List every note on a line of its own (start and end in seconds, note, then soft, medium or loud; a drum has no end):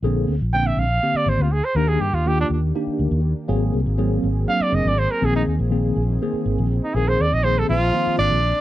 0.02 0.24 A#1 medium
0.02 0.33 D3 medium
0.02 0.34 A#3 medium
0.02 0.34 C4 medium
0.02 0.34 G#4 medium
0.28 0.38 D2 medium
0.41 0.72 A#1 medium
0.53 0.83 D3 medium
0.53 0.83 A#3 medium
0.53 0.83 C4 medium
0.53 0.83 D4 medium
0.53 0.68 G5 loud
0.67 0.80 E5 medium
0.76 0.98 A#1 medium
0.76 1.18 F5 loud
1.02 1.47 D3 medium
1.02 1.47 A#3 medium
1.02 1.47 C4 medium
1.02 1.47 G4 medium
1.14 1.30 D5 medium
1.14 muted fretless electric bass stroke soft
1.26 1.37 G#1 medium
1.26 1.44 C5 medium
1.39 1.60 D2 medium
1.39 1.53 F4 medium
1.52 1.66 G#4 medium
1.64 1.78 C5 medium
1.75 1.96 D#2 medium
1.75 2.06 D#3 medium
1.75 3.47 D#3 medium
1.75 8.61 A#3 medium
1.75 2.06 A#3 medium
1.75 3.47 D4 medium
1.75 2.06 D4 medium
1.75 3.47 G4 medium
1.75 2.06 G4 medium
1.75 1.90 A#4 medium
1.88 2.02 G#4 medium
2.00 2.11 G2 medium
2.00 2.16 G4 medium
2.12 2.44 D#2 medium
2.12 2.29 F4 medium
2.26 2.55 D#3 medium
2.26 2.56 A#3 medium
2.26 2.56 D4 medium
2.26 2.56 F4 medium
2.26 2.39 G4 medium
2.41 2.47 D4 medium
2.50 2.71 D#2 medium
2.75 3.19 D#3 medium
2.75 3.20 A#3 medium
2.75 3.20 D4 medium
2.75 3.20 G4 medium
2.87 muted fretless electric bass stroke soft
2.99 3.10 D2 medium
3.11 3.32 D#2 medium
3.48 3.70 G#1 medium
3.48 3.78 F#3 medium
3.48 5.21 F#3 medium
3.48 3.78 A#3 medium
3.48 3.79 C4 medium
3.48 5.20 C4 medium
3.48 3.79 G#4 medium
3.48 8.61 G#4 medium
3.73 3.84 C2 medium
3.86 4.17 G#1 medium
3.98 4.28 F#3 medium
3.98 4.28 A#3 medium
3.98 4.28 C4 medium
3.98 4.28 G#4 medium
4.23 4.44 G#1 medium
4.47 4.92 F#3 medium
4.47 4.92 A#3 medium
4.47 4.92 C4 medium
4.47 4.92 D4 medium
4.47 4.64 F5 loud
4.60 4.76 D5 medium
4.60 muted fretless electric bass stroke soft
4.72 4.83 F#1 medium
4.72 4.90 D#5 medium
4.85 5.06 G#1 medium
4.85 5.00 D5 medium
4.99 5.12 C5 medium
5.11 5.27 A#4 medium
5.21 5.43 A#1 medium
5.21 8.61 D#3 medium
5.21 5.51 D#3 medium
5.21 5.52 A#3 medium
5.21 8.61 C4 medium
5.21 5.52 C4 medium
5.21 5.52 G#4 medium
5.25 5.35 G#4 medium
5.36 5.43 D#4 medium
5.47 5.57 D#2 medium
5.59 5.90 A#1 medium
5.70 6.00 D#3 medium
5.70 6.01 A#3 medium
5.70 6.01 C4 medium
5.70 6.01 G#4 medium
5.96 6.17 A#1 medium
6.22 6.65 D#3 medium
6.22 6.66 A#3 medium
6.22 6.66 C4 medium
6.22 6.66 G#4 medium
6.33 muted fretless electric bass stroke soft
6.45 6.56 G#1 medium
6.58 6.79 A#1 medium
6.84 6.96 D#4 medium
6.94 7.15 A#1 medium
6.94 7.25 D#3 medium
6.94 7.25 A#3 medium
6.94 7.25 C4 medium
6.94 7.10 G#4 medium
6.94 7.25 G#4 medium
7.08 7.23 C5 medium
7.19 7.30 D#2 medium
7.19 7.35 D5 medium
7.32 7.63 A#1 medium
7.32 7.45 D#5 loud
7.44 7.73 D#3 medium
7.44 7.73 A#3 medium
7.44 7.74 C4 medium
7.44 7.74 G#4 medium
7.44 7.60 C5 loud
7.59 7.69 A4 medium
7.69 7.90 A#1 medium
7.69 8.16 F3 medium
7.69 8.15 F4 loud
7.93 8.38 D#3 medium
7.93 8.38 A#3 medium
7.93 8.38 C4 medium
7.93 8.38 F4 medium
8.07 muted fretless electric bass stroke soft
8.18 8.28 G#1 medium
8.18 8.61 D4 medium
8.18 8.61 D5 loud
8.30 8.51 A#1 medium